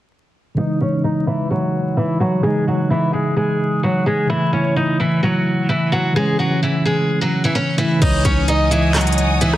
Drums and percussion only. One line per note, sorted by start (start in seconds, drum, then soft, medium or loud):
8.02 kick loud
8.02 closed hi-hat medium
8.02 crash loud
8.25 kick loud
8.25 closed hi-hat medium
8.48 closed hi-hat medium
8.72 closed hi-hat medium
8.95 cross-stick medium
8.95 clap loud
8.95 closed hi-hat medium
9.01 closed hi-hat medium
9.07 closed hi-hat medium
9.12 closed hi-hat medium
9.18 closed hi-hat medium
9.41 closed hi-hat medium
9.54 cross-stick loud